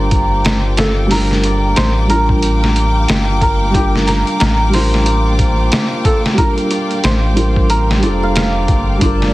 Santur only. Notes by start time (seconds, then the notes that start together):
Already playing: G4 A#4 C5 D5
0.78 A4
1.11 A#4
1.45 D5
1.76 C5
2.10 A#4
3.42 A#4
3.74 G4
4.07 A#4
4.40 A#4
4.74 C5
5.06 D5
6.05 A4
6.38 A#4
6.71 D5
7.04 C5
7.70 A#4
8.03 D5
8.23 F5
8.37 F5
9.02 D5